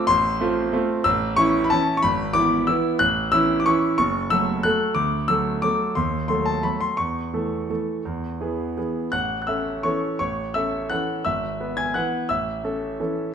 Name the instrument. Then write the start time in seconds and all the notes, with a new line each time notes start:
grand piano
0.07 A1 C6
0.40 A3 C4 F4
0.73 A3 C4 F4
1.04 A1 E6
1.36 E3 C#4 E4 C#6
1.64 B5
1.70 E3 C#4 E4 A5
1.97 C#6
2.03 G#1 B5
2.33 E3 B3 E4 D6
2.67 E3 B3 E4 E6
2.99 A1 F#6
3.32 E3 C#4 E4 E6
3.60 D6
3.66 E3 C#4 E4 C#6
3.98 F#1 C#6
4.30 F#3 A3 A4 E6
4.63 F#3 A3 A4 F#6
4.95 D2 D6
5.28 F#3 A3 A4 E6
5.62 F#3 A3 A4 D6
5.95 D#2 C6
6.28 F#3 A3 A4 C6
6.45 A5
6.63 F#3 A3 A4 B5
6.80 C6
6.97 E2 C#6
7.34 E3 A3 A4
7.70 E3 A3 A4
8.05 E2
8.41 E3 B3 G#4
8.77 E3 B3 G#4
9.12 A1 F#5 F#6
9.42 F#6
9.47 C#4 A4 E5 E6
9.83 E3 C#4 A4 C#5 C#6
10.19 A1 C#5 C#6
10.54 C#4 A4 E5 E6
10.90 E3 C#4 A4 F#5 F#6
11.25 G#1 E5 E6
11.60 B3 B4
11.77 G#5 G#6
11.94 E3 B3 B4 F#5 F#6
12.29 A1 E5 E6
12.64 C#4 A4
13.00 E3 C#4 A4